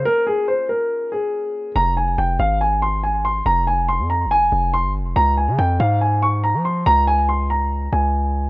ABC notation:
X:1
M:4/4
L:1/16
Q:1/4=141
K:Fm
V:1 name="Grand piano"
B2 A2 c2 B4 A6 | b2 a2 g2 f2 a2 c'2 a2 c'2 | b2 a2 c'2 b2 a4 c'2 z2 | b2 a2 g2 f2 a2 d'2 b2 c'2 |
b2 a2 c'2 b4 a6 |]
V:2 name="Felt piano"
[B,DFB]16 | z16 | z16 | z16 |
z16 |]
V:3 name="808-style bass" clef=bass
z16 | F,,,4 F,,,2 A,,,8- A,,,2 | F,,,4- F,,, F,,2- F,,/2 F,,,2- F,,,/2 F,,,3 G,,,3/2 F,,,3/2 | D,,3 D, F,,2 A,,6- A,, F,3 |
D,,8- D,,2 D,,6 |]